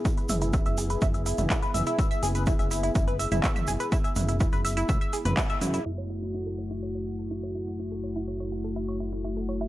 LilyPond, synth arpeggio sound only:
\new Staff \with { instrumentName = "Synth arpeggio sound" } { \time 4/4 \key fis \minor \tempo 4 = 124 e'16 b'16 e''16 e'16 e''16 e''16 gis'16 b'16 e'16 e''16 e'16 e'16 e'16 b'16 e''16 e'16 | e''16 e''16 gis'16 b'16 e'16 e''16 e'16 e'16 e'16 b'16 e''16 e'16 e''16 e''16 gis'16 b'16 | e'16 e''16 e'16 e'16 e'16 b'16 e''16 e'16 e''16 e''16 gis'16 b'16 e'16 e''16 e'16 e'16 | e'16 cis''16 e'16 e'16 e'16 a'16 cis''16 e'16 cis''16 cis''16 fis'16 a'16 e'16 cis''16 e'16 e'16 |
e'16 a'16 cis''16 e'16 cis''16 cis''16 fis'16 a'16 e'16 cis''16 e'16 e'16 e'16 a'16 cis''16 e'16 | }